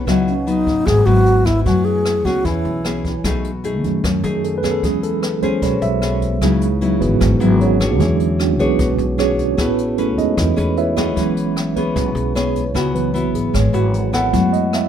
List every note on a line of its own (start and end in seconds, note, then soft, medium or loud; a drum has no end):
0.05 0.67 C#2 medium
0.05 0.84 C#3 medium
0.05 0.33 F#3 medium
0.05 0.33 B3 medium
0.05 1.61 D#4 medium
0.05 0.33 E4 medium
0.05 1.62 B4 medium
0.05 kick medium
0.05 cross-stick medium
0.05 closed hi-hat soft
0.09 1.64 D#5 medium
0.09 1.65 F#5 medium
0.28 0.49 C#4 medium
0.28 closed hi-hat soft
0.47 1.03 F#3 medium
0.47 1.03 B3 medium
0.47 0.88 D#4 medium
0.47 closed hi-hat soft
0.67 0.85 G#1 medium
0.67 kick medium
0.67 closed hi-hat soft
0.86 1.05 G#1 medium
0.86 1.64 G#2 medium
0.86 1.07 G#4 loud
0.86 kick medium
0.86 cross-stick medium
0.86 closed hi-hat soft
1.06 1.68 G#1 medium
1.06 1.43 F#3 medium
1.06 1.43 B3 medium
1.06 1.43 E4 medium
1.06 1.47 F#4 loud
1.06 closed hi-hat soft
1.26 closed hi-hat soft
1.45 2.22 B3 medium
1.45 1.64 E4 medium
1.45 2.22 E4 medium
1.45 kick medium
1.45 cross-stick medium
1.45 closed hi-hat soft
1.63 2.25 F#2 medium
1.63 2.43 F#3 medium
1.63 2.43 A3 soft
1.63 2.41 E4 soft
1.63 1.86 F#4 loud
1.63 2.43 B4 soft
1.63 kick medium
1.63 closed hi-hat soft
1.69 2.45 G#5 medium
1.85 2.27 G#4 medium
1.85 closed hi-hat soft
2.05 cross-stick medium
2.05 closed hi-hat soft
2.25 2.44 C#2 medium
2.25 2.82 B3 medium
2.25 2.82 C#4 medium
2.25 2.47 F#4 medium
2.25 2.82 G#4 medium
2.25 kick medium
2.25 closed hi-hat soft
2.42 2.64 E2 medium
2.42 3.23 E3 medium
2.42 3.21 E4 soft
2.42 3.05 E4 medium
2.42 3.22 B4 soft
2.42 3.23 C#5 soft
2.42 kick medium
2.42 closed hi-hat soft
2.48 3.24 G#5 medium
2.65 3.20 B1 medium
2.65 closed hi-hat soft
2.85 3.12 B3 medium
2.85 3.12 C#4 medium
2.85 3.12 G#4 medium
2.85 cross-stick medium
2.85 closed hi-hat soft
3.05 kick medium
3.05 closed hi-hat soft
3.24 3.84 B1 medium
3.24 4.02 B2 medium
3.24 3.50 A3 medium
3.24 3.50 D#4 medium
3.24 3.50 G#4 medium
3.24 kick medium
3.24 cross-stick medium
3.24 closed hi-hat medium
3.44 closed hi-hat soft
3.64 4.03 A3 medium
3.64 4.03 D#4 medium
3.64 4.04 G#4 medium
3.64 closed hi-hat soft
3.83 4.02 F#2 medium
3.83 4.10 D#3 soft
3.83 4.10 A3 soft
3.83 4.11 C#4 soft
3.83 kick soft
3.83 closed hi-hat soft
4.04 4.81 F#2 medium
4.04 4.22 F#2 medium
4.04 kick medium
4.04 cross-stick medium
4.04 closed hi-hat medium
4.23 4.84 F#2 medium
4.23 4.60 A3 medium
4.23 4.60 D#4 medium
4.23 4.43 G#4 medium
4.23 4.60 G#4 medium
4.23 closed hi-hat soft
4.44 4.57 A4 medium
4.44 closed hi-hat soft
4.58 4.70 B4 medium
4.63 5.39 B3 medium
4.63 5.39 C#4 medium
4.63 5.39 G#4 medium
4.63 kick soft
4.63 cross-stick medium
4.63 closed hi-hat soft
4.71 4.83 A4 medium
4.83 5.43 E2 medium
4.83 5.60 E3 medium
4.83 5.41 F#3 soft
4.83 5.41 G#3 soft
4.83 5.41 C#4 soft
4.83 5.03 G#4 medium
4.83 kick medium
4.83 closed hi-hat medium
5.03 5.22 A4 medium
5.03 closed hi-hat soft
5.23 5.42 B4 medium
5.23 cross-stick medium
5.23 closed hi-hat soft
5.42 5.61 B1 medium
5.42 5.60 F#3 soft
5.42 5.60 G#3 soft
5.42 5.99 B3 medium
5.42 5.60 C#4 soft
5.42 5.99 C#4 medium
5.42 5.99 G#4 medium
5.42 5.62 C5 medium
5.42 kick soft
5.42 closed hi-hat soft
5.62 5.81 B1 medium
5.62 6.40 B2 medium
5.62 5.82 C#5 medium
5.62 kick medium
5.62 closed hi-hat medium
5.82 6.42 B1 medium
5.82 5.94 E5 medium
5.82 closed hi-hat soft
6.02 6.28 B3 medium
6.02 6.29 C#4 medium
6.02 6.29 G#4 medium
6.02 cross-stick medium
6.02 closed hi-hat soft
6.22 kick soft
6.22 closed hi-hat soft
6.41 7.03 C#2 medium
6.41 7.19 C#3 medium
6.41 6.67 F#3 medium
6.41 6.79 G#3 soft
6.41 6.67 B3 medium
6.41 6.79 D#4 soft
6.41 6.67 E4 medium
6.41 6.79 E4 medium
6.41 6.79 G#4 medium
6.41 kick medium
6.41 cross-stick medium
6.41 closed hi-hat medium
6.61 closed hi-hat soft
6.81 7.37 F#3 medium
6.81 6.99 F#3 soft
6.81 7.38 B3 medium
6.81 7.01 C#4 soft
6.81 7.01 D#4 soft
6.81 7.38 E4 medium
6.81 7.00 F#4 medium
6.81 closed hi-hat soft
7.00 7.20 G#1 medium
7.00 7.95 E3 soft
7.00 7.96 F#3 soft
7.00 7.57 B3 medium
7.00 7.56 F#4 medium
7.00 7.57 G#4 medium
7.00 7.56 B4 medium
7.00 kick soft
7.00 closed hi-hat soft
7.20 7.39 G#1 medium
7.20 7.98 G#2 soft
7.20 kick medium
7.20 cross-stick medium
7.20 closed hi-hat medium
7.40 8.00 G#1 medium
7.40 7.77 F#3 medium
7.40 7.77 B3 medium
7.40 7.77 E4 medium
7.40 closed hi-hat soft
7.61 8.16 C#4 medium
7.61 8.16 F#4 medium
7.61 8.00 G#4 medium
7.61 8.16 C#5 medium
7.61 closed hi-hat soft
7.80 8.56 D4 medium
7.80 8.56 G#4 medium
7.80 8.56 C#5 medium
7.80 kick soft
7.80 cross-stick medium
7.80 closed hi-hat soft
7.99 8.59 E2 medium
7.99 9.54 D3 soft
7.99 8.77 E3 medium
7.99 8.39 F#3 soft
7.99 8.37 G#3 soft
7.99 8.37 D4 soft
7.99 8.37 E4 soft
7.99 8.37 G#4 medium
7.99 kick medium
7.99 closed hi-hat medium
8.20 closed hi-hat soft
8.39 8.59 F#3 soft
8.39 8.59 C#4 soft
8.39 8.59 D4 soft
8.39 8.59 F#4 soft
8.39 cross-stick medium
8.39 closed hi-hat soft
8.59 8.78 B1 medium
8.59 9.15 B3 medium
8.59 9.16 D4 medium
8.59 9.15 F#4 medium
8.59 9.16 G#4 medium
8.59 9.15 G#4 medium
8.59 9.15 B4 medium
8.59 9.16 C#5 medium
8.59 kick soft
8.59 closed hi-hat soft
8.79 8.97 B1 medium
8.79 9.56 B2 medium
8.79 kick medium
8.79 closed hi-hat medium
8.98 9.58 B1 medium
8.98 closed hi-hat soft
9.18 9.58 C#4 medium
9.18 9.56 D4 medium
9.18 9.75 F#4 medium
9.18 9.57 G#4 medium
9.18 9.59 G#4 medium
9.18 9.57 C#5 medium
9.18 9.75 C#5 medium
9.18 cross-stick medium
9.18 closed hi-hat soft
9.38 kick soft
9.38 closed hi-hat soft
9.57 10.18 A1 medium
9.57 10.35 A3 medium
9.57 9.96 B3 soft
9.57 9.83 C#4 medium
9.57 9.85 C#4 soft
9.57 9.96 E4 soft
9.57 9.84 G#4 medium
9.57 9.96 G#4 soft
9.57 9.84 B4 medium
9.57 9.96 B4 medium
9.57 kick medium
9.57 cross-stick medium
9.57 closed hi-hat medium
9.78 closed hi-hat soft
9.98 10.18 A3 soft
9.98 10.37 C#4 medium
9.98 10.17 C#4 soft
9.98 10.18 E4 soft
9.98 10.37 G#4 medium
9.98 10.17 A4 medium
9.98 10.38 B4 medium
9.98 closed hi-hat soft
10.17 10.36 E2 medium
10.17 10.35 G#3 soft
10.17 10.35 B3 soft
10.17 10.36 C#4 soft
10.17 10.73 D#4 medium
10.17 10.73 D#5 medium
10.17 kick soft
10.17 closed hi-hat soft
10.37 10.56 E2 medium
10.37 11.14 E3 medium
10.37 kick medium
10.37 cross-stick medium
10.37 closed hi-hat medium
10.56 11.17 E2 medium
10.56 10.93 C#4 medium
10.56 10.93 G#4 medium
10.56 10.94 B4 medium
10.56 closed hi-hat soft
10.77 11.33 E4 medium
10.77 11.33 B4 medium
10.77 11.33 C#5 medium
10.77 11.33 E5 medium
10.77 closed hi-hat soft
10.97 11.73 B3 medium
10.97 11.73 C#4 medium
10.97 11.73 G#4 medium
10.97 kick soft
10.97 cross-stick medium
10.97 closed hi-hat soft
11.16 11.76 E1 medium
11.16 11.94 E3 medium
11.16 12.70 F#3 soft
11.16 12.71 G#3 soft
11.16 12.71 C#4 soft
11.16 kick medium
11.16 closed hi-hat medium
11.37 closed hi-hat soft
11.57 cross-stick medium
11.57 closed hi-hat soft
11.76 11.95 B1 medium
11.76 12.32 B3 medium
11.76 12.33 C#4 medium
11.76 12.33 G#4 medium
11.76 12.13 B4 medium
11.76 kick soft
11.76 closed hi-hat soft
11.96 12.14 B1 loud
11.96 12.73 B2 medium
11.96 kick medium
11.96 closed hi-hat medium
12.15 12.75 B1 loud
12.15 12.34 G#4 soft
12.15 closed hi-hat soft
12.35 12.62 B3 medium
12.35 12.62 C#4 medium
12.35 12.62 G#4 medium
12.35 12.91 C#5 medium
12.35 cross-stick medium
12.35 closed hi-hat soft
12.55 kick soft
12.55 closed hi-hat soft
12.74 13.34 C#2 medium
12.74 13.52 C#3 medium
12.74 13.11 B3 medium
12.74 13.11 E4 medium
12.74 13.11 F#4 medium
12.74 kick medium
12.74 cross-stick medium
12.74 closed hi-hat medium
12.95 14.29 E3 soft
12.95 14.29 F#3 soft
12.95 14.29 B3 soft
12.95 13.32 B4 medium
12.95 closed hi-hat soft
13.14 13.53 B3 medium
13.14 13.54 E4 medium
13.14 13.54 F#4 medium
13.14 closed hi-hat soft
13.34 13.53 G#1 medium
13.34 13.54 G#4 medium
13.34 kick soft
13.34 closed hi-hat soft
13.54 13.72 G#1 medium
13.54 14.31 G#3 medium
13.54 14.10 C#5 medium
13.54 kick medium
13.54 cross-stick medium
13.54 closed hi-hat medium
13.73 14.35 G#1 medium
13.73 14.10 B3 medium
13.73 14.10 E4 medium
13.73 14.10 F#4 medium
13.73 closed hi-hat medium
13.94 closed hi-hat soft
14.13 14.88 B3 medium
14.13 14.88 E4 medium
14.13 14.88 A4 medium
14.13 14.50 F#5 medium
14.13 kick soft
14.13 cross-stick medium
14.13 closed hi-hat soft
14.32 14.88 F#2 medium
14.32 14.88 F#3 medium
14.32 14.59 G#3 soft
14.32 14.59 A3 soft
14.32 14.59 B3 soft
14.32 14.59 E4 medium
14.32 kick medium
14.32 closed hi-hat medium
14.53 14.72 D#5 medium
14.53 closed hi-hat soft
14.73 14.88 E5 medium
14.73 cross-stick medium
14.73 closed hi-hat soft